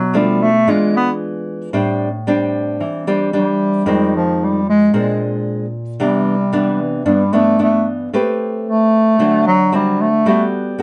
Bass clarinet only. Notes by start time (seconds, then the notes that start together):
Already playing: F#3
0.17 G3
0.42 A3
0.70 G#3
0.96 B3
3.37 G3
4.16 F3
4.44 G3
4.69 G#3
4.97 G#3
6.04 G3
6.82 E3
7.09 G3
7.33 A3
7.62 A3
8.69 A3
9.47 F#3
9.75 G3
10.01 A3
10.28 A3